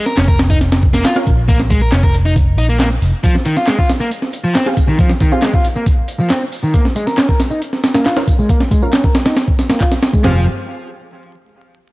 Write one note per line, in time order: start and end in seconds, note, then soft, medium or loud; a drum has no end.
0.06 0.17 A#4 loud
0.06 snare soft
0.17 1.01 F1 medium
0.17 0.27 C#4 medium
0.17 snare loud
0.17 clap loud
0.17 closed hi-hat medium
0.28 0.39 A#4 medium
0.28 kick medium
0.39 snare loud
0.39 closed hi-hat medium
0.50 0.58 D#4 loud
0.50 kick medium
0.61 snare soft
0.61 closed hi-hat medium
0.72 snare loud
0.72 closed hi-hat medium
0.83 kick medium
0.94 1.04 A#3 loud
0.94 snare soft
0.94 closed hi-hat medium
1.05 1.15 F4 medium
1.05 snare loud
1.05 clap loud
1.05 closed hi-hat medium
1.16 1.29 C#4 medium
1.16 1.29 F4 medium
1.16 1.29 A#4 medium
1.16 1.29 F5 medium
1.16 snare medium
1.27 1.89 A#1 medium
1.27 kick loud
1.27 closed hi-hat medium
1.48 1.59 A#3 medium
1.48 kick loud
1.48 closed hi-hat medium
1.60 snare soft
1.70 1.80 G#3 medium
1.70 kick medium
1.70 closed hi-hat medium
1.82 1.92 A#4 loud
1.92 2.58 F1 medium
1.92 2.02 C#4 medium
1.92 snare loud
1.92 clap loud
1.92 closed hi-hat medium
2.03 2.14 A#4 medium
2.03 kick loud
2.14 closed hi-hat medium
2.26 2.33 D#4 loud
2.36 kick loud
2.36 closed hi-hat medium
2.58 2.98 A#1 medium
2.58 2.66 D#4 medium
2.58 closed hi-hat medium
2.69 2.77 A#3 loud
2.80 2.87 A#3 medium
2.80 snare loud
2.80 clap loud
2.80 closed hi-hat medium
3.02 3.11 F1 medium
3.02 open hi-hat medium
3.24 3.34 F3 medium
3.24 kick loud
3.24 closed hi-hat medium
3.24 tambourine soft
3.35 snare soft
3.46 3.56 D#3 medium
3.46 closed hi-hat medium
3.46 tambourine medium
3.57 3.67 F4 loud
3.57 snare soft
3.57 tambourine soft
3.67 3.78 G#3 medium
3.67 snare loud
3.67 clap loud
3.67 closed hi-hat medium
3.67 tambourine soft
3.79 3.89 F4 medium
3.79 kick medium
3.89 snare medium
3.89 closed hi-hat medium
3.89 tambourine medium
4.00 4.08 A#3 loud
4.00 tambourine soft
4.11 closed hi-hat medium
4.11 tambourine soft
4.22 snare soft
4.33 closed hi-hat medium
4.33 tambourine medium
4.44 4.54 F3 loud
4.44 tambourine soft
4.55 4.66 C4 medium
4.55 snare loud
4.55 clap loud
4.55 closed hi-hat medium
4.55 tambourine soft
4.66 4.79 C4 medium
4.66 4.79 G4 medium
4.66 4.79 G#4 medium
4.66 4.79 F5 medium
4.66 snare medium
4.77 kick medium
4.77 closed hi-hat medium
4.77 tambourine medium
4.88 4.98 D#3 loud
4.88 tambourine soft
4.99 5.10 F3 medium
4.99 kick loud
4.99 closed hi-hat medium
4.99 tambourine soft
5.10 snare medium
5.20 5.31 D#3 medium
5.20 kick loud
5.20 closed hi-hat medium
5.20 tambourine medium
5.32 5.40 C4 medium
5.32 5.43 F4 loud
5.32 5.40 G4 medium
5.32 5.40 G#4 medium
5.32 5.40 F5 medium
5.32 tambourine soft
5.42 5.53 G#3 medium
5.42 snare loud
5.42 clap loud
5.42 closed hi-hat medium
5.42 tambourine soft
5.54 5.64 F4 medium
5.54 kick loud
5.64 closed hi-hat medium
5.64 tambourine medium
5.76 5.83 A#3 medium
5.76 tambourine soft
5.86 kick loud
5.86 closed hi-hat medium
5.86 tambourine soft
6.08 closed hi-hat medium
6.08 tambourine medium
6.19 6.29 F3 medium
6.19 tambourine soft
6.30 6.41 C4 medium
6.30 snare loud
6.30 clap loud
6.30 closed hi-hat medium
6.30 tambourine soft
6.52 open hi-hat medium
6.52 tambourine medium
6.63 6.73 D#3 loud
6.63 tambourine soft
6.74 6.85 A#3 medium
6.74 kick loud
6.74 closed hi-hat medium
6.74 tambourine soft
6.85 snare soft
6.96 7.06 G#3 medium
6.96 closed hi-hat medium
6.96 tambourine medium
7.07 7.17 A#4 loud
7.07 snare soft
7.07 tambourine soft
7.18 7.28 C#4 medium
7.18 snare loud
7.18 clap loud
7.18 closed hi-hat medium
7.18 tambourine soft
7.29 7.39 A#4 medium
7.29 kick medium
7.40 snare medium
7.40 closed hi-hat medium
7.40 tambourine medium
7.51 7.58 D#4 loud
7.51 tambourine soft
7.62 closed hi-hat medium
7.62 tambourine soft
7.73 snare soft
7.84 snare loud
7.84 closed hi-hat medium
7.84 tambourine medium
7.94 8.05 A#3 loud
7.94 snare loud
7.94 closed hi-hat medium
7.94 tambourine soft
8.06 8.16 F4 medium
8.06 snare loud
8.06 clap loud
8.06 closed hi-hat medium
8.06 tambourine soft
8.17 8.29 C#4 medium
8.17 8.29 F4 medium
8.17 8.29 A#4 medium
8.17 8.29 F5 medium
8.17 snare loud
8.17 closed hi-hat medium
8.27 kick loud
8.27 closed hi-hat medium
8.27 tambourine medium
8.39 8.49 G#3 loud
8.39 tambourine soft
8.49 8.60 A#3 medium
8.49 kick loud
8.49 closed hi-hat medium
8.49 tambourine soft
8.60 snare medium
8.71 8.81 G#3 medium
8.71 kick medium
8.71 closed hi-hat medium
8.71 tambourine medium
8.82 8.90 C#4 medium
8.82 8.90 F4 medium
8.82 8.90 A#4 medium
8.82 8.93 A#4 loud
8.82 8.90 F5 medium
8.82 tambourine soft
8.93 9.03 C#4 medium
8.93 snare loud
8.93 clap loud
8.93 closed hi-hat medium
8.93 tambourine soft
9.04 9.15 A#4 medium
9.04 kick medium
9.15 snare loud
9.15 closed hi-hat medium
9.15 tambourine medium
9.26 9.33 D#4 loud
9.26 snare loud
9.26 closed hi-hat medium
9.26 tambourine soft
9.37 snare loud
9.37 closed hi-hat medium
9.37 tambourine soft
9.48 kick medium
9.59 snare medium
9.59 closed hi-hat medium
9.59 tambourine medium
9.70 9.80 A#3 loud
9.70 snare loud
9.70 closed hi-hat medium
9.70 tambourine soft
9.80 9.91 F4 medium
9.80 kick medium
9.80 clap loud
9.80 tambourine soft
9.92 snare soft
9.92 closed hi-hat medium
10.02 snare loud
10.02 closed hi-hat medium
10.02 tambourine medium
10.13 10.23 G#3 medium
10.13 kick medium
10.13 tambourine soft
10.24 10.45 F1 medium
10.24 10.45 F3 medium
10.24 10.41 C4 medium
10.24 10.41 G4 medium
10.24 10.41 G#4 medium
10.24 10.41 F5 medium
10.24 snare loud
10.24 floor tom loud